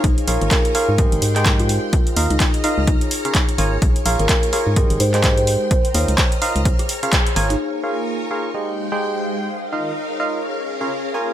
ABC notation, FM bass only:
X:1
M:4/4
L:1/16
Q:"Swing 16ths" 1/4=127
K:Dblyd
V:1 name="FM bass" clef=bass
B,,, z B,,, A,,, z3 A,,2 A,,, A,,4- A,, z | z2 E,, D,, z3 D,,2 z4 z A,,,2 | B,,, z B,,, A,,, z3 A,,2 A,,, A,,4- A,, z | z2 E,, D,, z3 D,,2 z4 z A,,,2 |
z16 | z16 |]